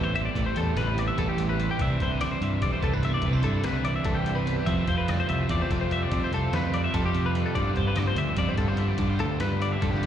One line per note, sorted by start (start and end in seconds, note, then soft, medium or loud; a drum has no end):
0.00 0.27 A1 medium
0.00 0.35 E2 medium
0.00 0.33 A2 medium
0.00 0.35 E3 medium
0.00 0.95 E3 medium
0.00 0.14 G3 medium
0.00 0.34 A3 medium
0.00 0.39 B3 medium
0.00 0.37 C4 medium
0.00 0.37 E4 medium
0.00 0.39 G4 soft
0.00 0.14 C5 medium
0.15 0.75 G3 medium
0.15 0.25 E5 medium
0.15 closed hi-hat soft
0.25 0.46 D5 medium
0.35 0.52 A1 medium
0.35 1.16 A2 medium
0.35 1.38 A2 medium
0.35 1.19 E3 medium
0.35 1.17 A3 medium
0.35 1.17 C4 medium
0.35 1.17 E4 medium
0.35 kick medium
0.35 closed hi-hat medium
0.46 0.56 C5 medium
0.56 0.72 E2 medium
0.56 1.82 G4 soft
0.56 0.77 A4 medium
0.56 closed hi-hat medium
0.75 1.09 A1 medium
0.75 1.18 G3 soft
0.75 0.99 B4 medium
0.75 snare medium
0.75 closed hi-hat medium
0.96 1.79 E3 medium
0.96 1.81 B3 medium
0.96 1.07 D5 medium
0.96 closed hi-hat medium
1.08 1.18 E5 medium
1.17 1.67 A1 loud
1.17 1.78 A2 medium
1.17 1.80 E3 medium
1.17 1.59 G3 medium
1.17 1.79 A3 medium
1.17 1.81 C4 medium
1.17 1.81 E4 medium
1.17 1.29 A4 medium
1.17 kick loud
1.17 closed hi-hat medium
1.29 1.49 G4 medium
1.38 1.79 E2 medium
1.38 closed hi-hat medium
1.49 1.69 B4 medium
1.59 3.06 G3 soft
1.59 closed hi-hat medium
1.71 1.80 G4 medium
1.78 1.96 C2 medium
1.78 2.41 C3 medium
1.78 2.60 C3 medium
1.78 2.42 E3 medium
1.78 2.62 E3 medium
1.78 2.62 G3 medium
1.78 2.63 C4 medium
1.78 2.43 D4 medium
1.78 2.64 E4 medium
1.78 2.01 E4 medium
1.78 2.01 E5 medium
1.78 kick medium
1.78 closed hi-hat medium
2.00 2.33 C2 medium
2.00 3.46 E4 medium
2.00 2.12 C5 medium
2.00 kick medium
2.00 snare soft
2.00 closed hi-hat medium
2.12 2.21 B4 medium
2.21 2.31 D5 medium
2.21 snare medium
2.21 closed hi-hat medium
2.32 2.43 C5 medium
2.41 2.58 G2 medium
2.41 3.36 E3 medium
2.41 2.81 D4 medium
2.41 2.62 E5 medium
2.41 closed hi-hat medium
2.62 2.78 B1 medium
2.62 3.22 C3 medium
2.62 3.24 E3 medium
2.62 3.24 G3 medium
2.62 3.25 C4 medium
2.62 3.25 E4 medium
2.62 2.72 D5 medium
2.62 kick loud
2.62 closed hi-hat medium
2.73 2.83 C5 medium
2.82 3.16 C2 medium
2.82 3.21 G2 medium
2.82 2.94 B3 medium
2.82 2.93 A4 medium
2.82 kick medium
2.82 closed hi-hat medium
2.93 3.24 D4 medium
2.93 3.03 B4 soft
3.03 3.23 B3 medium
3.03 3.14 E5 medium
3.03 snare soft
3.03 closed hi-hat medium
3.14 3.34 D5 medium
3.22 3.39 C2 medium
3.22 4.04 C3 medium
3.22 3.86 C3 medium
3.22 4.08 E3 medium
3.22 4.07 G3 medium
3.22 4.07 C4 medium
3.22 4.05 E4 medium
3.22 kick loud
3.22 closed hi-hat medium
3.26 3.33 B3 medium
3.33 3.85 D4 soft
3.33 3.44 C5 medium
3.43 3.60 G2 medium
3.43 4.68 E4 medium
3.43 3.65 A4 medium
3.43 closed hi-hat medium
3.64 3.98 C2 medium
3.64 3.85 B4 medium
3.64 snare loud
3.64 closed hi-hat medium
3.85 4.67 E3 medium
3.85 4.25 D4 soft
3.85 3.95 D5 medium
3.85 closed hi-hat medium
3.96 4.06 E5 medium
4.04 4.56 C2 loud
4.04 4.66 E3 medium
4.04 4.68 G3 medium
4.04 4.68 C4 medium
4.04 4.70 E4 medium
4.04 4.16 A4 medium
4.04 kick medium
4.04 snare soft
4.04 closed hi-hat medium
4.09 4.68 C3 medium
4.15 4.36 G4 medium
4.26 4.65 G2 soft
4.26 4.65 D4 soft
4.26 closed hi-hat medium
4.35 4.57 B4 medium
4.46 4.65 B3 soft
4.46 closed hi-hat medium
4.57 4.67 G4 medium
4.66 6.09 F2 medium
4.66 4.84 F2 medium
4.66 5.47 F3 medium
4.66 5.28 F3 medium
4.66 5.10 G3 medium
4.66 5.47 A3 medium
4.66 5.29 C4 soft
4.66 5.49 C4 medium
4.66 4.89 E4 medium
4.66 4.88 E5 medium
4.66 kick medium
4.66 closed hi-hat medium
4.70 5.50 F4 medium
4.87 5.21 F2 medium
4.87 6.33 F4 soft
4.87 4.97 C5 medium
4.87 kick medium
4.87 closed hi-hat medium
4.98 5.09 B4 medium
5.08 5.49 G3 medium
5.08 5.19 D5 medium
5.08 snare loud
5.08 closed hi-hat medium
5.20 5.29 C5 medium
5.28 5.46 C2 medium
5.28 6.57 F3 medium
5.28 5.71 C4 soft
5.28 5.50 E5 medium
5.28 closed hi-hat medium
5.47 5.66 E2 loud
5.47 6.09 F3 medium
5.47 5.91 G3 medium
5.47 6.10 A3 medium
5.47 6.12 C4 medium
5.47 6.13 F4 medium
5.47 5.61 D5 medium
5.47 kick loud
5.47 closed hi-hat medium
5.62 5.71 C5 soft
5.71 6.04 F2 medium
5.71 6.10 C3 medium
5.71 6.13 C4 medium
5.71 5.81 A4 medium
5.71 kick medium
5.71 closed hi-hat medium
5.81 5.91 C5 medium
5.91 6.54 G3 soft
5.91 6.03 E5 medium
5.91 closed hi-hat medium
6.03 6.23 D5 medium
6.09 6.29 F2 medium
6.09 7.54 F2 medium
6.09 6.96 F3 medium
6.09 6.93 A3 medium
6.09 6.94 C4 medium
6.09 6.93 F4 medium
6.09 kick medium
6.09 closed hi-hat medium
6.13 6.75 C4 medium
6.24 6.34 C5 medium
6.32 6.49 C2 medium
6.32 7.60 F4 medium
6.32 6.54 A4 medium
6.32 closed hi-hat soft
6.53 6.86 F2 medium
6.53 6.93 G3 medium
6.53 6.74 B4 medium
6.53 snare loud
6.53 closed hi-hat medium
6.74 7.60 F3 medium
6.74 7.15 C4 medium
6.74 6.84 D5 medium
6.74 closed hi-hat medium
6.84 6.95 E5 medium
6.94 7.44 F2 medium
6.94 7.55 F3 medium
6.94 7.36 G3 medium
6.94 7.56 A3 medium
6.94 7.58 C4 medium
6.94 7.58 F4 loud
6.94 7.05 A4 medium
6.94 kick loud
6.94 closed hi-hat medium
7.05 7.26 G4 medium
7.14 7.54 C3 medium
7.14 8.16 C4 medium
7.14 closed hi-hat medium
7.26 7.46 B4 medium
7.35 7.95 G3 medium
7.35 snare soft
7.35 closed hi-hat soft
7.46 7.56 A4 medium
7.55 8.35 G2 medium
7.55 7.73 G2 medium
7.55 8.57 G2 medium
7.55 8.37 D3 medium
7.55 8.38 F3 medium
7.55 8.38 B3 medium
7.55 7.77 D5 medium
7.55 kick loud
7.55 closed hi-hat medium
7.59 8.40 F4 medium
7.76 8.10 G2 medium
7.76 9.20 G4 medium
7.76 7.87 C5 medium
7.76 kick medium
7.76 closed hi-hat soft
7.87 7.97 B4 medium
7.96 8.38 G3 soft
7.96 8.07 D5 medium
7.96 snare medium
7.96 closed hi-hat medium
8.07 8.18 C5 medium
8.15 8.33 D2 medium
8.15 9.60 D3 medium
8.15 9.62 C4 medium
8.15 8.38 E5 medium
8.15 closed hi-hat medium
8.36 8.55 F2 loud
8.36 8.98 G2 medium
8.36 8.99 D3 medium
8.36 9.00 F3 medium
8.36 8.79 G3 medium
8.36 9.00 B3 medium
8.36 8.49 D5 medium
8.36 kick medium
8.36 snare soft
8.36 closed hi-hat medium
8.41 9.02 F4 medium
8.49 8.57 C5 medium
8.58 8.92 G2 medium
8.58 8.98 G2 medium
8.58 8.68 A4 medium
8.58 kick medium
8.58 snare soft
8.58 closed hi-hat medium
8.68 8.79 C5 medium
8.77 9.42 G3 medium
8.77 8.88 E5 medium
8.77 snare soft
8.77 closed hi-hat medium
8.88 9.09 D5 medium
8.98 10.03 G2 medium
8.98 9.17 G2 medium
8.98 9.81 G2 medium
8.98 9.82 D3 medium
8.98 9.81 F3 medium
8.98 9.80 B3 medium
8.98 kick medium
8.98 closed hi-hat medium
9.03 9.79 F4 medium
9.09 9.21 C5 medium
9.19 9.37 D2 medium
9.19 10.06 G4 soft
9.19 9.40 A4 medium
9.19 closed hi-hat medium
9.40 9.75 G2 medium
9.40 9.81 G3 medium
9.40 9.62 B4 medium
9.40 snare loud
9.40 closed hi-hat medium
9.61 10.06 D3 medium
9.61 10.04 C4 medium
9.61 9.72 D5 medium
9.61 closed hi-hat medium
9.72 9.83 E5 medium
9.80 10.06 G2 medium
9.80 10.06 D3 medium
9.80 10.06 F3 medium
9.80 10.06 G3 medium
9.80 10.06 B3 medium
9.80 10.06 F4 medium
9.80 9.91 A4 medium
9.80 kick loud
9.80 closed hi-hat medium
9.80 high tom medium
9.91 10.06 G4 soft
9.91 snare medium
10.03 closed hi-hat medium